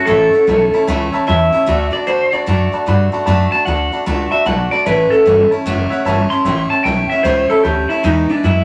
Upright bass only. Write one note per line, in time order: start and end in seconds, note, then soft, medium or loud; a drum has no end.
0.08 0.33 A1 medium
0.34 muted upright bass stroke medium
0.47 0.73 B1 loud
0.74 muted upright bass stroke medium
0.88 1.13 C#2 medium
1.14 muted upright bass stroke medium
1.28 1.53 E2 medium
1.54 muted upright bass stroke medium
1.68 1.93 D2 medium
1.94 muted upright bass stroke medium
2.08 2.32 E2 medium
2.33 muted upright bass stroke soft
2.47 2.72 F#2 medium
2.73 muted upright bass stroke medium
2.87 3.12 G2 medium
3.13 muted upright bass stroke medium
3.27 3.52 F#2 medium
3.53 muted upright bass stroke medium
3.67 3.92 D2 medium
3.94 muted upright bass stroke medium
4.07 4.32 C#2 medium
4.32 muted upright bass stroke medium
4.46 4.71 B1 loud
4.73 muted upright bass stroke medium
4.86 5.11 A1 medium
5.12 muted upright bass stroke medium
5.26 5.51 G1 medium
5.51 muted upright bass stroke medium
5.66 5.91 F#1 medium
5.91 muted upright bass stroke medium
6.05 6.30 G1 medium
6.31 muted upright bass stroke medium
6.45 6.70 A1 medium
6.71 muted upright bass stroke medium
6.85 7.10 B1 medium
7.10 muted upright bass stroke medium
7.24 7.49 C#2 medium
7.50 muted upright bass stroke medium
7.65 7.89 D2 medium
7.91 muted upright bass stroke medium
8.04 8.29 E2 medium
8.30 muted upright bass stroke medium
8.44 8.64 F#2 medium